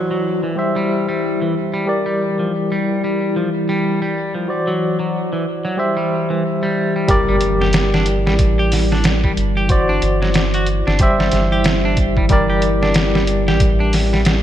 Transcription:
Already playing: E3 E4 F#4 C5 D5, downlifter
0.11 F#3
0.43 E3
0.56 G3 G4 C5 E5
0.76 G3
1.09 G3
1.42 E3
1.74 G3
1.86 G3 G4 A#4 D5
2.06 G3
2.39 F3
2.72 G3
3.04 G3
3.36 F3
3.69 G3
4.02 G3
4.35 F3
4.48 F#4 C5 D5
4.67 F#3
4.99 F#3
5.33 E3
5.65 F#3
5.77 G3 G4 C5 E5
5.97 G3
6.30 E3
6.63 G3
6.96 G3
7.08 G1 E3 G3 E4 G4 A#4 D5, kick, closed hi-hat, impact
7.29 G3
7.41 closed hi-hat
7.61 G4, snare
7.73 snare, closed hi-hat
7.94 D4, snare
8.06 closed hi-hat
8.26 A1 G3, snare
8.39 kick, closed hi-hat
8.59 G4
8.72 snare, open hi-hat
8.92 D4, snare
9.04 snare, closed hi-hat
9.24 G3, kick
9.37 G1, closed hi-hat
9.57 G4
9.69 F#4 C5 D5, kick, closed hi-hat
9.89 D4
10.02 G1, closed hi-hat
10.22 F#3, snare
10.34 snare, closed hi-hat
10.54 F#4, closed hi-hat
10.66 closed hi-hat
10.87 G1 D4, snare
10.99 G3 G4 C5 E5, kick, closed hi-hat
11.20 G3, snare
11.31 G1, snare, closed hi-hat
11.52 G4
11.64 snare, closed hi-hat
11.85 D4
11.97 kick, closed hi-hat
12.17 G3, kick
12.29 G1 G3 G4 A#4 D5, kick, closed hi-hat
12.50 G4
12.62 closed hi-hat
12.83 D4, snare
12.94 snare, closed hi-hat
13.15 G3, snare
13.27 closed hi-hat
13.47 A1 G4, snare
13.60 kick, closed hi-hat
13.80 D4
13.93 snare, open hi-hat
14.13 G3, snare
14.25 snare, closed hi-hat

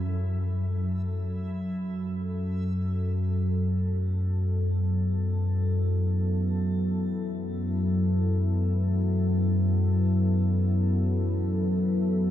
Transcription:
Already playing: F#3 C#4 F#4 A4
0.02 F#2 F#3
0.89 B3
2.88 E4

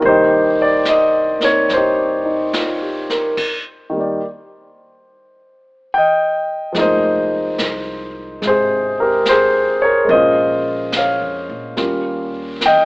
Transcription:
0.00 C2 D#3 G3 A#3, brush sweep
0.05 D#4 G4 C5
0.62 D5
0.85 D#5, snare, hi-hat pedal
1.39 A#3 C4 D#4, snare
1.44 C#5
1.69 G1, brush sweep, snare
1.73 D#4 G4 C5
2.25 D#4
2.53 F4, snare, hi-hat pedal
2.82 G4
3.09 A#4, snare
3.37 kick, crash
3.90 D#3 G3
3.96 A#3 D5
5.94 D#5 G5
6.72 F1 F3 G#3 A#3, brush sweep, snare
6.78 D#4 C5 D#5
7.58 C2, snare, hi-hat pedal
8.41 G#1 C3 G#3, brush sweep, snare
8.47 G#4 C5
9.00 G4 A#4
9.25 C5, snare, hi-hat pedal
9.31 G#4
9.82 A#4 C#5
10.04 G#3 A#3
10.09 A#1 C#4 C5 D#5, brush sweep
10.15 F4
10.92 snare, hi-hat pedal
10.97 C#5 F5
11.21 F2
11.49 A#2
11.77 D#2 G3 A#3 C#4 F4, brush sweep, snare
12.61 snare, hi-hat pedal
12.66 D#5 G5

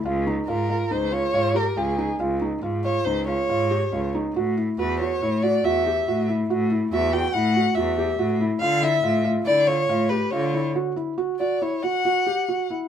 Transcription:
0.05 C#2 F4
0.27 D#4
0.48 G#2 F4 A#4
0.70 F4
0.91 C#2 D#4 C5
1.12 F4 C#5
1.34 G#2 F4
1.55 G4 A#4
1.77 C#2 F4 G#4
1.98 D#4
2.20 C#2 F4
2.42 D#4
2.63 G#2 F4
2.84 F4 C#5
3.04 C#2 D#4 C5
3.27 F4 C#5
3.49 G#2 F4
3.71 G4
3.92 C#2 F4
4.15 D#4
4.36 A2 F#4
4.58 E4
4.79 E2 F#4 B4
5.00 F#4 C#5
5.22 A2 E4
5.43 F#4 D5
5.64 E2 F#4 E5
5.87 G4
6.08 A2 F#4
6.29 E4
6.50 A2 F#4
6.71 E4
6.92 E2 F#4 E5
7.13 F#4 G5
7.33 A2 E4 F#5
7.56 F#4
7.75 E2 F#4 E5
7.98 G4
8.19 A2 F#4
8.41 E4
8.61 D3 F4 F5
8.82 E4 E5
9.03 A2 F4
9.25 F4
9.46 D3 E4 D5
9.67 F4 C#5
9.89 A2 F4
10.09 G4 B4
10.30 D3 F4 C#5
10.54 E4
10.75 F#4
10.96 E4
11.18 F#4
11.40 F#4 D5
11.62 E4 C#5
11.83 F#4 F#5
12.05 F#4
12.27 G4
12.49 F#4
12.70 E4

